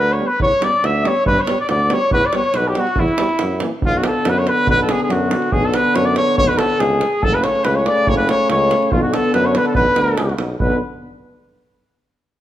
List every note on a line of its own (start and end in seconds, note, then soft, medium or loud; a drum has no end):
0.00 0.21 D2 medium
0.00 0.13 B4 medium
0.00 0.14 B4 loud
0.12 0.28 C#5 medium
0.12 0.29 C#5 medium
0.19 0.28 G3 medium
0.19 0.29 B3 medium
0.27 0.41 B4 medium
0.27 0.41 B4 loud
0.39 0.51 E2 medium
0.39 0.66 C#5 loud
0.39 0.66 C#5 medium
0.39 davul low loud
0.52 davul high soft
0.60 0.69 G3 medium
0.60 0.72 B3 medium
0.60 davul high medium
0.64 0.87 D5 loud
0.64 0.87 D5 medium
0.73 davul high soft
0.83 1.07 D2 medium
0.83 1.08 E5 medium
0.83 1.09 E5 medium
0.83 davul high medium
0.96 davul high soft
1.04 1.13 G3 medium
1.04 1.14 B3 medium
1.04 1.26 C#5 medium
1.04 1.26 C#5 loud
1.04 davul high medium
1.17 davul high soft
1.26 1.38 G2 medium
1.26 1.43 B4 loud
1.26 1.40 B4 medium
1.26 davul low loud
1.38 1.59 C#5 medium
1.38 1.60 C#5 medium
1.38 davul high soft
1.47 1.56 G3 medium
1.47 1.56 B3 medium
1.47 davul high medium
1.58 1.68 D5 medium
1.58 1.69 D5 loud
1.58 davul high soft
1.69 1.93 D2 loud
1.69 1.95 D5 medium
1.69 1.94 D5 medium
1.69 davul high medium
1.79 davul high soft
1.89 1.99 G3 medium
1.89 1.98 B3 medium
1.89 2.13 C#5 medium
1.89 davul high medium
1.93 2.12 C#5 loud
2.01 davul high soft
2.11 2.24 E2 medium
2.11 2.27 B4 loud
2.11 2.28 B4 medium
2.11 davul low loud
2.23 2.37 D5 medium
2.23 davul high soft
2.33 2.42 G3 medium
2.33 2.42 B3 medium
2.33 2.58 C#5 medium
2.33 2.58 C#5 loud
2.33 davul high medium
2.44 davul high soft
2.54 2.79 B1 medium
2.54 2.70 B4 medium
2.54 2.69 B4 medium
2.54 davul high medium
2.67 2.80 G4 medium
2.67 2.81 G4 medium
2.75 2.85 G3 medium
2.75 2.85 B3 medium
2.75 3.01 F#4 medium
2.75 davul high medium
2.87 davul high soft
2.96 3.10 E2 loud
2.96 3.62 E4 medium
2.96 davul low loud
3.08 davul high soft
3.18 3.28 G3 medium
3.18 3.26 B3 medium
3.18 davul high medium
3.29 davul high soft
3.39 3.64 F#2 medium
3.39 davul high medium
3.60 3.70 E3 medium
3.60 3.70 A#3 medium
3.60 davul high medium
3.82 4.07 B1 loud
3.82 5.49 D3 medium
3.82 5.49 B3 medium
3.82 3.99 F4 loud
3.82 davul low loud
3.97 4.09 F#4 medium
4.04 4.31 A4 loud
4.04 davul high medium
4.25 4.50 F#2 loud
4.25 davul high medium
4.30 4.40 B4 medium
4.39 4.50 C#5 medium
4.47 4.69 B4 loud
4.47 davul high medium
4.58 davul high soft
4.67 4.92 B1 loud
4.67 4.79 B4 loud
4.67 davul low loud
4.82 4.92 A4 medium
4.89 5.02 G#4 loud
4.89 davul high medium
5.00 5.13 G#4 medium
5.00 davul high soft
5.09 5.33 F#2 loud
5.09 5.54 F#4 medium
5.09 davul high medium
5.31 davul high medium
5.42 davul high soft
5.52 5.76 B1 medium
5.52 7.03 D3 medium
5.52 7.03 B3 medium
5.52 5.67 G#4 loud
5.52 davul low loud
5.65 5.76 A4 medium
5.74 5.97 B4 loud
5.74 davul high medium
5.85 davul high soft
5.95 6.19 F#2 loud
5.95 6.07 C#5 loud
5.95 davul high medium
6.06 6.16 D5 medium
6.16 6.36 C#5 loud
6.16 davul high medium
6.28 davul high soft
6.37 6.61 B1 medium
6.37 6.50 C#5 medium
6.37 6.49 C#5 loud
6.37 davul low loud
6.48 6.59 B4 medium
6.58 6.81 A4 medium
6.58 6.82 A4 loud
6.58 davul high medium
6.70 davul high soft
6.79 7.03 C#2 loud
6.79 7.24 G#4 medium
6.79 7.26 G#4 loud
6.79 davul high medium
7.01 davul high medium
7.21 7.45 F#1 medium
7.21 8.88 C#3 medium
7.21 8.93 A3 medium
7.21 7.35 A4 loud
7.21 7.36 A4 loud
7.21 davul low loud
7.34 7.46 B4 medium
7.44 7.66 C#5 medium
7.44 7.67 C#5 medium
7.44 davul high medium
7.55 davul high soft
7.65 7.88 C#2 medium
7.65 7.77 B4 medium
7.65 davul high medium
7.75 7.88 C#5 medium
7.86 8.10 D5 loud
7.86 8.09 D5 loud
7.86 davul high medium
7.98 davul high soft
8.07 8.30 F#1 loud
8.07 8.18 C#5 medium
8.07 8.17 C#5 loud
8.07 davul low medium
8.17 8.27 B4 loud
8.17 8.28 B4 medium
8.29 8.48 C#5 medium
8.29 8.49 C#5 loud
8.29 davul high medium
8.40 davul high soft
8.50 8.73 C#2 loud
8.50 8.94 C#5 medium
8.50 8.94 C#5 loud
8.50 davul high medium
8.71 davul high medium
8.82 davul high soft
8.91 9.16 B1 loud
8.91 10.40 D3 medium
8.91 10.43 B3 medium
8.91 9.02 F4 medium
8.91 davul low loud
9.02 9.15 F#4 medium
9.14 9.33 A4 medium
9.14 9.34 A4 loud
9.14 davul high medium
9.25 davul high soft
9.33 9.57 F#2 loud
9.33 9.46 B4 medium
9.33 9.48 B4 loud
9.33 davul high medium
9.45 9.56 C#5 medium
9.45 9.59 C#5 medium
9.55 9.65 B4 medium
9.55 9.67 B4 loud
9.55 davul high medium
9.65 9.75 A4 medium
9.65 davul high soft
9.75 9.88 B1 loud
9.75 10.35 B4 loud
9.75 10.35 B4 medium
9.75 davul low loud
9.96 10.16 D2 medium
9.96 davul high medium
10.08 davul high soft
10.18 10.37 C#2 loud
10.18 davul high medium
10.29 davul high soft
10.38 10.57 B1 medium
10.38 davul high medium
10.60 10.79 B1 medium
10.60 10.80 D3 medium
10.60 10.79 B3 medium
10.60 10.79 B4 medium
10.60 10.80 B4 medium
10.60 davul low loud